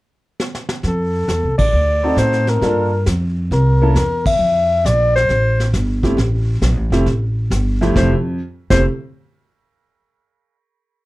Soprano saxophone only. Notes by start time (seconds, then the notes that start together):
0.87 A4
1.58 D5
2.18 C5
2.49 A#4
3.53 A#4
4.27 E5
4.86 D5
5.15 C5
7.97 C5
8.70 C5